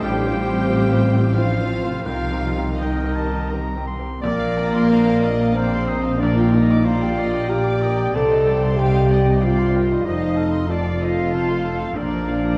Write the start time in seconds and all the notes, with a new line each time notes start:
Already playing: A2 C4 F4
0.00 A1 A2 G3 D4 G4 C5 F5 G5
0.04 G5
0.26 C4 F4 C5
0.37 C4
0.48 C4 F4 C5
0.68 C4 F4 C5
0.91 C4 F4 C5
1.14 C4 F4 C5
1.34 F3 C4 D4 F4 C5 F5
1.38 C5
1.61 C4 F4 C5
1.70 C4
1.84 C4 F4 C5
1.89 C3
1.93 C4
1.97 G4
2.02 C2 A#4 F5
2.06 C2 F3 D#4 F4 A#4 F5 G5
2.31 C4 G4 A#4
2.56 C4 G4 A#4
2.79 D#3 C4 D#4 G4 A#4 D#5 G5
3.04 C4 G4 A#4
3.16 A5
3.29 C4 G4 A#4
3.50 C4 G4 A#4 A#5
3.76 C4 G4 A#4
3.87 C6
3.99 C4 G4 A#4
4.22 A#1 A#2 A#3 A#4 D5
4.39 F3 F5
4.57 C4 A#4 A#5
4.74 F4 C6
4.89 D4 A#4 C5 D5 F5 A#5
5.08 C5 F5
5.22 A#4 D5 D#5 F5
5.40 F5 A#5
5.54 C4 C5 D5 F5 A#5
5.59 F2
5.72 C5 C6
5.88 A#4 C5 D#5 A#5
6.04 F5
6.18 A#2 D4 A#4 D5
6.23 A#1
6.35 F4 F5 G5
6.50 G3 D#4 D#5 A#5
6.56 A#4
6.71 D6
6.84 D4 F4 C5 D5 F5 A#5
7.02 G4 G5
7.16 A#4 D5 D#5
7.34 G5 D6
7.49 A#2 G4 D5 F5 G5 A#5
7.65 G4 D6
7.81 A#4 D#5 A#5
7.98 G5
8.14 C2 C3 A4 C5 D5 A5
8.31 C4 D#5
8.46 G3 G4 G5
8.63 D#4 C6
8.77 D#4 G4 C5 F5 G5
8.94 G4 D#5
9.08 G4 D5 D#5 G5
9.25 D#5 D6
9.40 G2 F4 C5 D5 F5 G5
9.58 G4 C6
9.74 G4 A#4 C5 D5 G5
9.90 D#4 D#5
10.04 F1 F2 D#4 C5 D#5
10.20 C3 F5
10.35 A3 A4 F5 A5
10.51 D#4 C6
10.68 C4 F4 C5 D5 F5 A5
10.83 A4 F5
10.98 A4 C5 D#5
11.03 D#5
11.15 F5 C6
11.31 C3 A4 C5 D#5 F5 A5
11.48 A4 C6
11.63 A4 C5 A5
11.79 D#4 F5
11.94 A#1 A#2 D4 A#4 C5 D5 F5
12.09 F3 D5
12.27 A#3 F4 F5
12.42 F4 A#5